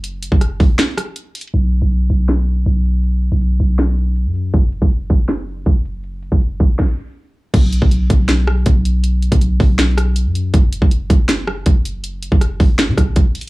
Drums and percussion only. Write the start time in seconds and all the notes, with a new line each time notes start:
0.04 closed hi-hat
0.23 closed hi-hat
0.32 kick
0.41 cross-stick, closed hi-hat
0.60 kick, open hi-hat
0.79 snare, closed hi-hat
0.97 cross-stick, closed hi-hat
1.16 closed hi-hat
1.35 closed hi-hat, open hi-hat
1.41 closed hi-hat
1.47 closed hi-hat
1.54 closed hi-hat
1.72 closed hi-hat
1.91 closed hi-hat
2.10 closed hi-hat
2.29 snare, closed hi-hat
2.66 closed hi-hat
2.85 closed hi-hat
3.04 closed hi-hat
3.22 closed hi-hat
3.32 closed hi-hat
3.41 closed hi-hat
3.79 snare, closed hi-hat
3.98 closed hi-hat
4.16 closed hi-hat
4.35 closed hi-hat
4.54 kick, closed hi-hat
4.72 closed hi-hat
4.82 kick
4.91 closed hi-hat
5.10 kick, closed hi-hat
5.29 snare, closed hi-hat
5.66 kick, closed hi-hat
5.85 closed hi-hat
6.04 closed hi-hat
6.23 closed hi-hat
6.32 kick
6.41 closed hi-hat
6.60 kick
6.79 kick, snare
7.54 kick, closed hi-hat, crash
7.73 closed hi-hat
7.82 kick
7.91 closed hi-hat
8.10 kick, closed hi-hat
8.29 snare, closed hi-hat
8.47 cross-stick
8.66 kick, closed hi-hat
8.85 closed hi-hat
9.04 closed hi-hat
9.22 closed hi-hat
9.32 kick, closed hi-hat
9.41 closed hi-hat
9.60 kick, open hi-hat
9.79 snare, closed hi-hat
9.98 cross-stick, closed hi-hat
10.16 closed hi-hat
10.35 closed hi-hat
10.54 kick, closed hi-hat
10.73 closed hi-hat
10.82 kick
10.91 closed hi-hat
11.10 kick, closed hi-hat
11.29 snare, closed hi-hat
11.47 cross-stick
11.66 kick, closed hi-hat
11.85 closed hi-hat
12.04 closed hi-hat
12.23 closed hi-hat
12.32 kick
12.41 cross-stick, closed hi-hat
12.60 kick, open hi-hat
12.79 snare, closed hi-hat
12.97 kick, cross-stick, closed hi-hat
13.16 kick, closed hi-hat
13.35 closed hi-hat, open hi-hat
13.41 closed hi-hat